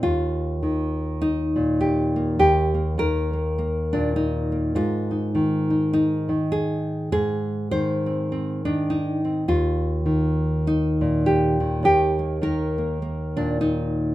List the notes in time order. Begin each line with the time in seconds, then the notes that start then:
0.03 D#2 F4
0.63 D#3
1.22 D#4
1.56 A#2
1.81 G4
2.16 A#3
2.39 D#2 G4
2.74 A#3
2.98 D#3 A#4
3.33 A#3
3.58 A#3
3.93 A#2 D4
4.16 D#4
4.52 A#3
4.75 G#2 F4
5.11 D#4
5.35 D#3
5.70 D#4
5.93 D#4
6.29 D#3
6.52 G#4
7.12 G#2 G#4
7.71 D#3 C5
8.06 C4
8.32 C4
8.65 D#3 D4
8.90 D#4
9.25 C4
9.48 D#2 F4
10.06 D#3
10.67 D#4
11.01 A#2
11.26 G4
11.60 D#3
11.83 D#2 G4
12.19 A#3
12.42 D#3 A#4
12.78 A#3
13.02 A#3
13.36 A#2 D4
13.61 D#4